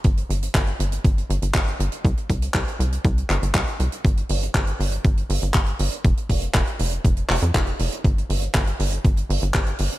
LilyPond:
<<
  \new Staff \with { instrumentName = "Analog synth bass" } { \clef bass \time 4/4 \key c \dorian \tempo 4 = 120 g,,8 g,,8 g,,8 g,,8 g,,8 g,,16 g,,16 g,,8 g,,16 r16 | c,16 r16 c,8 c,16 r16 c,8 c,8 g,,16 g,,16 c,16 r16 c,16 r16 | g,,8 g,,8 g,,8 g,,8 g,,8 g,,16 g,,16 g,,8 g,,16 r16 | f,,16 r16 f,,8 f,,16 r16 f,,8 f,,8 f,,16 f,16 f,,8 f,,16 r16 |
g,,8 g,,8 g,,8 g,,8 g,,8 g,,16 g,,16 g,,8 g,,16 r16 | }
  \new DrumStaff \with { instrumentName = "Drums" } \drummode { \time 4/4 <hh bd>16 hh16 hh16 hh16 <hc hh bd>16 hh16 hh16 hh16 <hh bd>16 hh16 hh16 hh16 <hc hh bd>16 hh16 hh16 hh16 | <hh bd>16 hh16 <hh bd>16 hh16 <hc hh bd>16 hh16 hh16 hh16 <hh bd>16 hh16 <hc hh>16 hh16 <hc hh bd>16 hh16 hh16 hh16 | <hh bd>16 hh16 hho16 hh16 <hc hh bd>16 hh16 hho16 hh16 <hh bd>16 hh16 hho16 hh16 <hc hh bd>16 hh16 hho16 hh16 | <hh bd>16 hh16 <hho bd>16 hh16 <hc hh bd>16 hh16 hho16 hh16 <hh bd>16 hh16 <hc hho>16 hh16 <hc hh bd>16 hh16 hho16 hh16 |
<hh bd>16 hh16 hho16 hh16 <hc hh bd>16 hh16 hho16 hh16 <hh bd>16 hh16 hho16 hh16 <hc hh bd>16 hh16 hho16 hh16 | }
>>